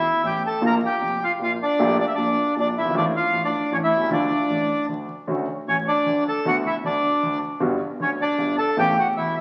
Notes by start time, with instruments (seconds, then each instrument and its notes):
Already playing: bandoneon E4 E5
0.23 grand piano A1 A2, bandoneon G4 G5
0.46 bandoneon A4 A5
0.61 grand piano A#1 A#2 D3 F3 A#3 F4
0.66 bandoneon A#4 A#5
0.85 bandoneon G4 G5
1.01 grand piano F1 F2
1.24 bandoneon F4 F5
1.40 grand piano A#1 A#2, bandoneon F4
1.44 bandoneon F5
1.62 bandoneon D4 D5
1.79 grand piano A#1 A#2 D3 A3 A#3 G4
1.99 bandoneon D4 D5
2.08 bandoneon E5
2.15 grand piano A#1 A#2, bandoneon D4 D5
2.57 grand piano A#1 A#2, bandoneon D4
2.61 bandoneon D5
2.78 grand piano F#1, bandoneon E4 E5
2.85 grand piano G1
2.90 grand piano G#1
2.95 grand piano A1 A2 D3 F3 A3 F4, bandoneon D4 D5
3.16 bandoneon F4 F5
3.33 grand piano A1 A2
3.44 bandoneon D4 D5
3.72 grand piano A1 A2, bandoneon C#4 C#5
3.83 bandoneon E4 E5
3.96 grand piano B1
4.01 grand piano C2
4.06 grand piano C#2
4.11 grand piano D2 D3 F3 A3 F4, bandoneon D4 D5
4.49 grand piano A1 A2
4.89 grand piano D2 D3
5.27 grand piano D2 D3 A3 C#4 F#4
5.68 grand piano A1 A2, bandoneon C#4 C#5
5.88 bandoneon D4 D5
6.06 grand piano D2 D3
6.28 bandoneon A4 A5
6.45 grand piano D2 D3 A3 B3 F#4, bandoneon F#4 F#5
6.66 bandoneon E4 E5
6.83 grand piano D2 D3, bandoneon D4 D5
7.23 grand piano D2 D3
7.60 grand piano G1 G2 D3 G3 B3 F#4
8.00 grand piano D2 D3, bandoneon C#4 C#5
8.21 bandoneon D4 D5
8.38 grand piano G1 G2
8.58 bandoneon A4 A5
8.77 grand piano A1 A2 C#3 A3 B3 E4, bandoneon G4 G5
8.99 bandoneon F#4 F#5
9.17 grand piano E1 E2, bandoneon E4 E5
9.37 bandoneon E5